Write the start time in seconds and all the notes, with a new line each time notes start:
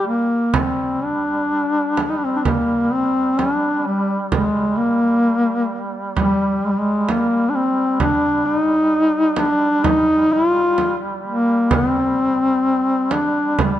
Already playing: G3
0.07 A#3
0.54 G3 C4, frame drum
1.04 D4
1.97 frame drum
2.09 D#4
2.17 D4
2.24 C4
2.36 C4 D4
2.45 A#3, frame drum
2.93 C4
3.38 D4, frame drum
3.87 G3
4.32 G#3, frame drum
4.77 A#3
6.17 G3, frame drum
6.64 G#3
6.71 G3
6.78 G#3
7.09 A#3, frame drum
7.50 D4
7.56 C4
8.00 D4, frame drum
8.46 D#4
9.37 D4, frame drum
9.84 D#4, frame drum
10.33 F4
10.78 frame drum
11.26 A#3
11.71 C4, frame drum
13.11 D4, frame drum
13.59 G3, frame drum